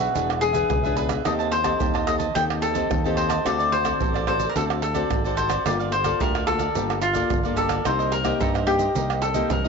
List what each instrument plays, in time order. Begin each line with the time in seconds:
Already playing: nylon-string guitar B2 B3 D4 G#4, cavaquinho F#4
0.00 cavaquinho G#4 B4 E5, pandeiro, maracas
0.14 fingered electric bass E1, nylon-string guitar E3 B3 D4 G#4, cavaquinho D4 G#4 B4 E5, pandeiro, maracas, surdo
0.30 pandeiro, tamborim, maracas
0.41 cavaquinho G#4, muted cavaquinho stroke, pandeiro, maracas
0.53 nylon-string guitar B3 D4 G#4, cavaquinho G#4 B4 E5, pandeiro, maracas, surdo
0.70 fingered electric bass C#2, nylon-string guitar B2, pandeiro, tamborim, maracas, surdo
0.83 nylon-string guitar B3 D4 G#4, cavaquinho G#4 B4 E5, pandeiro, maracas, surdo
0.95 cavaquinho D4 G#4 B4 E5, pandeiro, maracas
1.09 cavaquinho G#4 B4 E5, pandeiro, tamborim, maracas, surdo
1.25 fingered electric bass D#2, nylon-string guitar D#3 C4 G4 A4, cavaquinho G4 C5 D#5 A5, pandeiro, tamborim, maracas, surdo
1.39 cavaquinho C5 D#5 A5, pandeiro, maracas
1.51 cavaquinho C5, muted cavaquinho stroke, pandeiro
1.64 nylon-string guitar C4 G4 A4, cavaquinho C5 D#5 A5, pandeiro, tamborim, maracas, surdo
1.79 fingered electric bass D#2, nylon-string guitar D#3, cavaquinho G4 C5 D#5 A5, pandeiro, maracas, surdo
1.94 cavaquinho C5 D#5 A5, pandeiro, tamborim, maracas
2.07 nylon-string guitar C4 G4 A4, cavaquinho D#5, pandeiro, tamborim, maracas
2.18 cavaquinho C5 D#5 A5, pandeiro, maracas
2.34 fingered electric bass D#2, nylon-string guitar D#3 C4 G4 A4, cavaquinho G4 C5 D#5 G5 A5, pandeiro, maracas, surdo
2.50 pandeiro, tamborim, maracas
2.61 cavaquinho A4, muted cavaquinho stroke, pandeiro
2.74 nylon-string guitar C4 G4 A4, cavaquinho C5 D#5 A5, pandeiro, maracas, surdo
2.90 fingered electric bass D#2, nylon-string guitar D#3, pandeiro, tamborim, maracas, surdo
3.04 nylon-string guitar C4 G4 A4, cavaquinho C5 D#5 A5, pandeiro, maracas, surdo
3.16 cavaquinho G4 C5 D#5 A5, pandeiro
3.29 cavaquinho C5 D#5 A5, pandeiro, tamborim, maracas, surdo
3.44 fingered electric bass D2, nylon-string guitar D3 C4 F#4 A4, cavaquinho F#4 A4 C5 D5, pandeiro, tamborim, maracas, surdo
3.59 cavaquinho A4 C5 D5, pandeiro, maracas
3.71 cavaquinho C5, muted cavaquinho stroke, pandeiro
3.83 nylon-string guitar C4 F#4 A4, cavaquinho A4 C5 D5, pandeiro, tamborim, maracas, surdo
4.00 fingered electric bass A1, nylon-string guitar A2, cavaquinho F#4 A4 C5 D5, pandeiro, maracas, surdo
4.14 cavaquinho A4 C5 D5, pandeiro, tamborim, maracas
4.27 nylon-string guitar C4 F#4 A4, cavaquinho C5, pandeiro, tamborim
4.39 cavaquinho A4 C5 D5, pandeiro, maracas
4.49 cavaquinho A#4
4.55 fingered electric bass D2, nylon-string guitar D3 C4 F#4 A4, cavaquinho F#4 A4 C5 D5, pandeiro, maracas, surdo
4.70 pandeiro, tamborim, maracas
4.82 cavaquinho A4, muted cavaquinho stroke, pandeiro
4.94 nylon-string guitar C4 F#4 A4, cavaquinho A4 C5 D5, pandeiro, maracas, surdo
5.10 fingered electric bass G#1, pandeiro, tamborim, maracas, surdo
5.24 nylon-string guitar C4 F#4 A4, cavaquinho A4 C5 D5, pandeiro, maracas, surdo
5.36 cavaquinho F#4 A4 C5 D5, pandeiro, maracas
5.49 cavaquinho A4 C5 D5, pandeiro, tamborim, maracas, surdo
5.65 fingered electric bass G1, nylon-string guitar G3 A#3 F4 A4, cavaquinho G4 A#4 D5 F5, pandeiro, tamborim, maracas, surdo
5.79 cavaquinho A#4 D5 F5, pandeiro, maracas
5.92 cavaquinho C5, muted cavaquinho stroke, pandeiro
6.04 nylon-string guitar A#3 F4 A4, cavaquinho A#4 D5 F5, pandeiro, tamborim, maracas, surdo
6.20 fingered electric bass D2, nylon-string guitar D3, cavaquinho G4 A#4 D5 F5, pandeiro, maracas, surdo
6.35 cavaquinho A#4 D5 F5, pandeiro, tamborim, maracas
6.47 nylon-string guitar A#3 F4 A4, cavaquinho A4, pandeiro, tamborim
6.59 cavaquinho A#4 D5 F5, pandeiro, maracas
6.74 fingered electric bass G1, nylon-string guitar G3 A#3 F4 A4, cavaquinho G4 A#4 D5 F5, pandeiro, maracas, surdo
6.90 pandeiro, tamborim, maracas
7.01 cavaquinho F4, muted cavaquinho stroke, pandeiro, maracas
7.13 nylon-string guitar A#3 F4 A4, cavaquinho A#4 D5 F5, pandeiro, maracas, surdo
7.30 fingered electric bass G1, nylon-string guitar D3, pandeiro, tamborim, maracas, surdo
7.43 nylon-string guitar A#3 F4 A4, cavaquinho A#4 D5 F5, pandeiro, maracas, surdo
7.56 cavaquinho G4 A4 A#4 D5 F5, pandeiro, maracas
7.68 cavaquinho A#4 D5 F5, pandeiro, tamborim, maracas, surdo
7.84 fingered electric bass C2, nylon-string guitar C3 A#3 D#4 G4, cavaquinho D#4 A#4 C5 D#5, pandeiro, tamborim, maracas, surdo
7.99 cavaquinho A#4 C5 D#5, pandeiro, maracas
8.11 cavaquinho A#4, muted cavaquinho stroke, pandeiro
8.24 nylon-string guitar A#3 D#4 G4, cavaquinho A#4 C5 D#5, pandeiro, tamborim, maracas, surdo
8.40 fingered electric bass G2, nylon-string guitar G2, cavaquinho D#4 A4 A#4 C5 D#5, pandeiro, maracas, surdo
8.54 cavaquinho A#4 C5 D#5, pandeiro, tamborim, maracas
8.67 nylon-string guitar A#3 D#4 G4, cavaquinho G4, pandeiro, tamborim
8.78 cavaquinho A#4 C5 D#5, pandeiro, maracas
8.95 fingered electric bass C2, nylon-string guitar C3 A#3 D#4 G4, cavaquinho D#4 A#4 C5 D#5, pandeiro, maracas, surdo
9.10 pandeiro, tamborim, maracas
9.21 cavaquinho A4, muted cavaquinho stroke, pandeiro
9.34 nylon-string guitar A#3 D#4 G4, cavaquinho A#4 C5 D#5, pandeiro, maracas, surdo
9.50 fingered electric bass C2, nylon-string guitar G2, cavaquinho A#4, pandeiro, tamborim, maracas, surdo
9.64 nylon-string guitar A#3, cavaquinho D#5, pandeiro, maracas, surdo